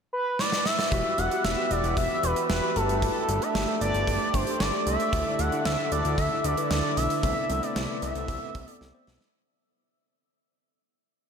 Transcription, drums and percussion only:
0.39 snare medium
0.52 snare medium
0.66 snare medium
0.79 snare medium
0.92 kick loud
0.92 closed hi-hat medium
1.18 closed hi-hat medium
1.31 closed hi-hat soft
1.45 snare loud
1.71 closed hi-hat medium
1.84 closed hi-hat soft
1.97 kick medium
1.97 closed hi-hat medium
2.23 closed hi-hat medium
2.36 closed hi-hat medium
2.50 snare loud
2.76 closed hi-hat medium
2.89 closed hi-hat soft
3.02 kick medium
3.02 closed hi-hat medium
3.29 closed hi-hat medium
3.42 closed hi-hat soft
3.55 snare loud
3.81 closed hi-hat medium
3.94 closed hi-hat soft
4.07 kick medium
4.07 closed hi-hat medium
4.34 kick medium
4.34 closed hi-hat medium
4.47 closed hi-hat medium
4.60 snare loud
4.87 closed hi-hat medium
5.00 closed hi-hat soft
5.13 kick loud
5.13 closed hi-hat medium
5.39 closed hi-hat medium
5.52 closed hi-hat soft
5.65 snare loud
5.92 closed hi-hat medium
6.05 closed hi-hat soft
6.18 kick medium
6.18 closed hi-hat medium
6.44 closed hi-hat medium
6.57 closed hi-hat medium
6.71 snare loud
6.97 closed hi-hat medium
7.10 closed hi-hat soft
7.23 kick loud
7.23 closed hi-hat medium
7.50 closed hi-hat medium
7.63 closed hi-hat soft
7.76 snare loud
8.02 closed hi-hat medium
8.15 closed hi-hat soft
8.28 kick medium
8.28 closed hi-hat medium
8.55 kick medium
8.55 closed hi-hat medium
8.68 closed hi-hat medium
8.81 snare medium
9.07 snare medium
9.21 snare medium

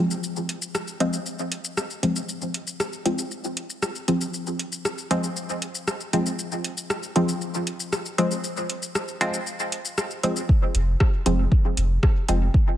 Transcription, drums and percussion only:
0.11 shaker medium
0.23 shaker soft
0.36 shaker soft
0.49 closed hi-hat medium
0.62 shaker medium
0.75 cross-stick medium
0.75 shaker soft
0.88 shaker soft
1.00 closed hi-hat medium
1.13 shaker medium
1.26 shaker soft
1.39 shaker soft
1.52 closed hi-hat medium
1.65 shaker medium
1.77 cross-stick medium
1.77 shaker soft
1.90 shaker soft
2.03 closed hi-hat medium
2.16 shaker medium
2.29 shaker soft
2.42 shaker soft
2.54 closed hi-hat medium
2.67 shaker medium
2.80 cross-stick medium
2.80 shaker soft
2.93 shaker soft
3.06 closed hi-hat medium
3.18 shaker medium
3.31 shaker soft
3.44 shaker soft
3.57 closed hi-hat medium
3.70 shaker medium
3.83 cross-stick medium
3.83 shaker soft
3.95 shaker soft
4.08 closed hi-hat medium
4.21 shaker medium
4.34 shaker soft
4.47 shaker soft
4.59 closed hi-hat medium
4.72 shaker medium
4.85 cross-stick medium
4.85 shaker soft
4.98 shaker soft
5.11 closed hi-hat medium
5.24 shaker soft
5.36 shaker soft
5.49 shaker soft
5.62 closed hi-hat medium
5.75 shaker medium
5.88 cross-stick medium
5.88 shaker soft
6.00 shaker soft
6.13 closed hi-hat medium
6.26 shaker medium
6.39 shaker soft
6.52 shaker soft
6.64 closed hi-hat medium
6.77 shaker medium
6.90 cross-stick medium
6.90 shaker soft
7.03 shaker soft
7.16 closed hi-hat medium
7.29 shaker medium
7.41 shaker soft
7.54 shaker soft
7.67 closed hi-hat medium
7.80 shaker medium
7.93 cross-stick medium
7.93 shaker soft
8.05 shaker soft
8.18 closed hi-hat medium
8.31 shaker medium
8.44 shaker soft
8.57 shaker soft
8.70 closed hi-hat medium
8.82 shaker medium
8.95 cross-stick medium
8.95 shaker soft
9.08 shaker soft
9.21 closed hi-hat medium
9.34 shaker medium
9.47 shaker soft
9.59 shaker soft
9.72 closed hi-hat medium
9.85 shaker medium
9.98 cross-stick medium
9.98 shaker soft
10.11 shaker soft
10.23 closed hi-hat medium
10.36 shaker medium
10.49 kick loud
10.75 closed hi-hat medium
11.00 kick loud
11.00 cross-stick medium
11.26 closed hi-hat medium
11.52 kick loud
11.77 closed hi-hat medium
12.03 kick loud
12.03 cross-stick medium
12.29 closed hi-hat medium
12.54 kick loud

